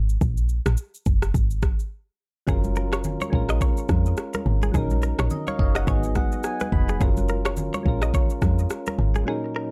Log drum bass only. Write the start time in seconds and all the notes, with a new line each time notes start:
Already playing: G#1
0.21 A#1
0.66 A#1
1.06 F#1
1.34 G#1
2.48 F#1
3.33 A#1
3.89 F2
4.46 G#1
4.74 A#1
5.19 A#1
5.59 F#1
5.87 G#1
6.72 F1
7.01 F#1
7.86 A#1
8.42 F2
8.99 G#1